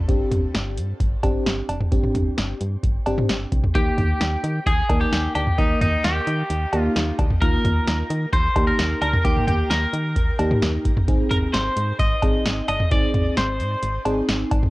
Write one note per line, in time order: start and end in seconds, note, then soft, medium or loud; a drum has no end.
0.09 0.25 G1 loud
0.09 0.77 C4 medium
0.09 0.77 D4 medium
0.09 0.77 G4 loud
0.09 kick loud
0.09 closed hi-hat medium
0.31 0.48 G1 loud
0.31 closed hi-hat medium
0.31 mid tom loud
0.54 0.79 G1 loud
0.54 snare loud
0.54 closed hi-hat medium
0.77 0.93 G2 loud
0.77 closed hi-hat medium
1.00 1.16 G1 loud
1.00 kick loud
1.00 closed hi-hat medium
1.23 1.39 G1 loud
1.23 1.75 C4 medium
1.23 1.75 D4 medium
1.23 1.75 G4 loud
1.23 kick loud
1.23 closed hi-hat medium
1.23 cowbell medium
1.46 1.62 G1 loud
1.46 snare loud
1.46 closed hi-hat medium
1.69 1.85 F1 medium
1.69 closed hi-hat medium
1.69 cowbell medium
1.81 mid tom medium
1.92 2.08 G1 loud
1.92 2.61 C4 medium
1.92 2.61 D4 medium
1.92 2.61 G4 loud
1.92 kick loud
1.92 closed hi-hat medium
2.03 mid tom medium
2.15 2.31 G1 loud
2.15 closed hi-hat medium
2.15 mid tom loud
2.38 2.54 G1 loud
2.38 snare loud
2.38 closed hi-hat medium
2.61 2.77 G2 medium
2.61 closed hi-hat medium
2.83 2.99 G1 loud
2.83 kick loud
2.83 closed hi-hat medium
3.06 3.23 G1 loud
3.06 3.58 C4 medium
3.06 3.58 D4 medium
3.06 3.58 G4 loud
3.06 closed hi-hat medium
3.06 cowbell medium
3.18 mid tom loud
3.29 3.45 G1 loud
3.29 snare loud
3.29 closed hi-hat medium
3.52 3.68 C2 loud
3.52 kick medium
3.52 closed hi-hat medium
3.64 mid tom medium
3.75 3.91 D#2 loud
3.75 4.44 A#3 medium
3.75 4.44 D#4 medium
3.75 4.44 G4 medium
3.75 4.63 G4 loud
3.75 kick loud
3.75 closed hi-hat medium
3.98 4.14 D#2 loud
3.98 closed hi-hat medium
3.98 mid tom loud
4.21 4.37 D#2 loud
4.21 snare loud
4.21 closed hi-hat medium
4.44 4.60 D#3 loud
4.44 closed hi-hat medium
4.66 4.83 D#2 loud
4.66 5.00 G#4 loud
4.66 kick loud
4.66 closed hi-hat medium
4.89 5.06 D#2 loud
4.89 5.41 A#3 medium
4.89 5.41 D#4 medium
4.89 5.41 A#4 medium
4.89 kick loud
4.89 closed hi-hat medium
4.89 cowbell medium
5.01 5.34 G4 loud
5.12 5.28 D#2 medium
5.12 snare loud
5.12 closed hi-hat medium
5.35 5.51 D2 medium
5.35 5.59 G4 loud
5.35 closed hi-hat medium
5.35 cowbell medium
5.47 mid tom medium
5.58 5.74 D#2 loud
5.58 6.27 A#3 medium
5.58 5.80 D#4 loud
5.58 6.27 D#4 medium
5.58 6.27 A#4 medium
5.58 kick loud
5.58 closed hi-hat medium
5.81 5.97 D#2 loud
5.81 6.05 D#4 medium
5.81 closed hi-hat medium
5.81 mid tom loud
6.04 6.20 D#2 loud
6.04 6.80 G4 medium
6.04 snare loud
6.04 closed hi-hat medium
6.27 6.43 D#3 loud
6.27 closed hi-hat medium
6.50 6.66 D#2 loud
6.50 closed hi-hat medium
6.73 6.89 D#2 loud
6.73 7.24 A#3 medium
6.73 7.24 D#4 medium
6.73 7.24 G4 loud
6.73 closed hi-hat medium
6.73 cowbell medium
6.80 7.15 F4 medium
6.96 7.12 D#2 loud
6.96 snare loud
6.96 closed hi-hat medium
7.19 7.35 D2 medium
7.19 kick loud
7.19 closed hi-hat medium
7.19 cowbell medium
7.30 mid tom medium
7.42 7.58 D#2 loud
7.42 8.10 A#3 medium
7.42 8.10 D#4 medium
7.42 8.10 F4 medium
7.42 8.29 A#4 loud
7.42 kick loud
7.42 closed hi-hat medium
7.65 7.81 D#2 loud
7.65 closed hi-hat medium
7.65 mid tom loud
7.87 8.03 D#2 loud
7.87 snare loud
7.87 closed hi-hat medium
8.10 8.26 D#3 loud
8.10 closed hi-hat medium
8.33 8.49 D#2 loud
8.33 8.67 C5 loud
8.33 kick loud
8.33 closed hi-hat medium
8.56 8.72 D#2 loud
8.56 9.08 A#3 medium
8.56 9.07 D#4 medium
8.56 9.07 G4 medium
8.56 kick loud
8.56 closed hi-hat medium
8.56 cowbell medium
8.67 9.00 A#4 loud
8.79 8.95 D#2 loud
8.79 snare loud
8.79 closed hi-hat medium
9.02 9.18 D2 loud
9.02 9.23 A#4 loud
9.02 closed hi-hat medium
9.02 cowbell medium
9.13 mid tom medium
9.25 9.41 D#2 loud
9.25 9.93 A#3 medium
9.25 9.93 D#4 medium
9.25 9.46 G4 loud
9.25 9.93 A#4 medium
9.25 kick loud
9.25 closed hi-hat medium
9.36 mid tom medium
9.47 9.64 D#2 loud
9.47 9.69 G4 medium
9.47 closed hi-hat medium
9.47 mid tom loud
9.70 9.86 D#2 loud
9.70 10.81 A#4 medium
9.70 snare loud
9.70 closed hi-hat medium
9.93 10.18 D#3 medium
9.93 closed hi-hat medium
10.16 10.32 D#2 loud
10.16 kick loud
10.16 closed hi-hat medium
10.39 10.55 D#2 loud
10.39 10.91 A#3 medium
10.39 10.91 D#4 medium
10.39 10.91 G4 loud
10.39 closed hi-hat medium
10.39 cowbell medium
10.51 mid tom loud
10.62 10.78 D#2 loud
10.62 snare loud
10.62 closed hi-hat medium
10.85 11.01 G1 medium
10.85 kick loud
10.85 closed hi-hat medium
10.97 mid tom medium
11.08 11.24 G#1 loud
11.08 11.77 C4 medium
11.08 11.77 D#4 medium
11.08 11.77 G#4 loud
11.08 kick loud
11.08 closed hi-hat medium
11.31 11.47 G#1 loud
11.31 11.37 A#4 medium
11.31 closed hi-hat medium
11.31 mid tom loud
11.54 11.70 G#1 loud
11.54 11.99 C5 loud
11.54 snare loud
11.54 closed hi-hat medium
11.77 11.93 G#2 loud
11.77 closed hi-hat medium
11.99 12.15 G#1 loud
11.99 12.67 D#5 loud
11.99 kick loud
11.99 closed hi-hat medium
12.22 12.39 G#1 medium
12.22 12.74 C4 medium
12.22 12.74 D#4 medium
12.22 12.74 G#4 medium
12.22 kick loud
12.22 closed hi-hat medium
12.22 cowbell medium
12.45 12.61 G#1 loud
12.45 snare loud
12.45 closed hi-hat medium
12.68 12.84 G1 medium
12.68 12.91 D#5 loud
12.68 closed hi-hat medium
12.68 cowbell medium
12.80 mid tom medium
12.91 13.07 G#1 loud
12.91 13.60 C4 medium
12.91 13.60 D#4 medium
12.91 13.60 G#4 medium
12.91 13.37 D5 loud
12.91 kick loud
12.91 closed hi-hat medium
13.14 13.30 G#1 loud
13.14 closed hi-hat medium
13.14 mid tom loud
13.37 13.61 G#1 loud
13.37 14.02 C5 medium
13.37 snare loud
13.37 closed hi-hat medium
13.60 13.76 G#2 loud
13.60 closed hi-hat medium
13.83 13.99 G#1 loud
13.83 closed hi-hat medium
14.05 14.22 G#1 medium
14.05 14.57 C4 medium
14.05 14.57 D#4 medium
14.05 14.57 G#4 loud
14.05 closed hi-hat medium
14.05 cowbell medium
14.29 14.45 G#1 loud
14.29 snare loud
14.29 closed hi-hat medium
14.51 14.67 G#1 loud
14.51 kick loud
14.51 closed hi-hat medium
14.51 cowbell medium
14.63 mid tom medium